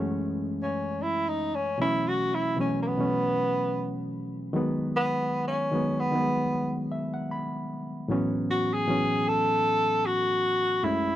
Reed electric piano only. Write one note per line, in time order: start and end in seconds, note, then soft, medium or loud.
0.00 1.83 F#2 medium
0.00 1.79 E3 medium
0.00 1.82 G#3 medium
0.00 1.81 A3 medium
0.00 1.82 C#4 medium
1.78 2.38 B2 medium
1.78 2.39 E3 medium
1.78 2.39 F#3 medium
1.78 2.39 A3 medium
1.78 2.40 C#4 medium
2.56 2.88 B2 medium
2.56 2.88 E3 medium
2.56 2.88 F#3 medium
2.56 2.89 A3 medium
2.56 2.90 C#4 medium
2.97 4.11 B2 medium
2.97 4.12 E3 medium
2.97 4.12 F#3 medium
2.97 4.12 A3 medium
2.97 4.13 C#4 medium
4.53 5.51 D#3 medium
4.53 5.52 F#3 medium
4.53 5.52 G#3 medium
4.53 5.53 B3 medium
5.72 6.03 D#3 medium
5.72 6.03 F#3 medium
5.72 6.04 G#3 medium
5.72 6.04 B3 medium
6.12 7.26 D#3 medium
6.12 7.26 F#3 medium
6.12 6.21 G3 soft
6.12 7.27 B3 medium
6.20 7.30 G#3 medium
6.92 7.13 E5 medium
7.14 7.29 F#5 medium
7.31 8.06 B5 medium
8.08 8.68 A2 medium
8.08 8.68 E3 medium
8.08 8.69 F#3 medium
8.08 8.69 B3 medium
8.08 8.69 C#4 medium
8.87 10.01 A2 medium
8.87 10.01 E3 medium
8.87 10.02 F#3 medium
8.87 10.02 B3 medium
8.87 10.02 C#4 medium
10.83 11.16 F#2 medium
10.83 11.16 G#3 medium
10.83 11.16 A3 medium
10.83 11.16 C#4 medium
10.83 11.16 E4 medium